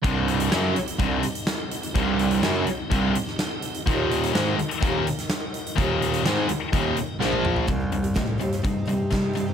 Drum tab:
HH |x-xxx-xxx-xxx-xx|x-xxx-x-x-x-x-xx|x-xxx-xxx-xxx-xx|x-xxx-x-x-x-----|
SD |----o-------o---|----o------oo---|----o------oo---|----o-------o---|
T1 |----------------|----------------|----------------|-------------o--|
T2 |----------------|----------------|----------------|--------------o-|
FT |----------------|----------------|----------------|---------------o|
BD |o-------o-------|o-------o-------|o-------o-------|o-------o-------|

HH |x-xxx-xxx-x-x-x-|
SD |----o--o----o---|
T1 |----------------|
T2 |----------------|
FT |----------------|
BD |o---o---o---o---|